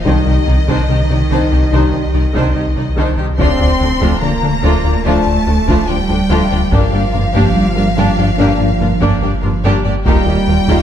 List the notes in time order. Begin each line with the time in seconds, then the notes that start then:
0.05 C2 D#3 G3 D4 D#4 C5 D#5, taiko
0.26 C2 D#3 D#4 G4 D#5
0.46 C2 D#3 D#4 D5
0.68 C2 D#3 D4 D#4 C5, taiko
0.89 C2 C3 D#3 D#4 G4 D#5
1.09 C2 C3 D#3 D#4 D5
1.30 C2 D#3 D4 D#4 C5
1.51 C2 D#3 D#4 G4 D#5
1.71 C2 D#3 G3 D4 D#4 C5
1.93 C2
2.14 C2 D#3 D#4 D5
2.34 C2 D#3 D4 D#4 C5, taiko
2.55 C2 D#3 D#4 G4 D#5
2.76 C2 D#3 D#4 D5
2.97 C2 D#3 D4 D#4 C5
3.17 C2 D#3 D#4 G4 D#5
3.38 D1 D2 F3 A3 C4 D4 F4 C6, taiko
3.59 D2 F3 D4 F4 D5
3.79 D2 F3 D4 A4
4.01 D2 F3 A3 D4 F4, taiko
4.21 D2 D3 F3 A#3 D4 F4 D5 A#5
4.42 D2 D3 F3 D4 A4
4.62 D2 F3 A3 D4 F4
4.84 D2 F3 D4 F4 D5
5.05 D2 F3 A3 D4 F4 A5
5.26 D2
5.46 D2 F3 D4 A4
5.67 D2 F3 A3 D4 F4, taiko
5.88 D2 F3 G3 D4 F4 D5 G5
6.09 D2 F3 D4 A4
6.29 D2 F3 A3 D4 F4
6.50 D2 F3 D4 F4 D5
6.72 G1 G2 F3 A#3 D4 G4 F5, taiko
6.93 G2 A#3 D4 G4 D5
7.12 G2 A#3 D4 F4 A#4
7.33 G2 A#3 D4 G4, taiko
7.55 G2 G3 A#3 D4 G4 D5
7.75 G2 G3 A#3 D4 F4 A#4
7.97 G2 A#3 D4 G4
8.18 G2 A#3 D4 G4 D5
8.38 G2 A#3 D4 G4
8.60 G2
8.81 G2 A#3 D4 F4 A#4
9.01 G2 A#3 D4 G4, taiko
9.22 G2 A#3 D4 G4 D5
9.42 G2 A#3 D4 F4 A#4
9.64 G2 A#3 D4 G4
9.85 G2 A#3 D4 G4 D5
10.06 D#1 D#2 G3 A#3 D#4 F4 G4 G5, taiko
10.26 D#2 A#3 F4 G4 D#5
10.47 D#2 A#3 F4 A#4
10.68 D#2 A#3 D#4 F4 G4, taiko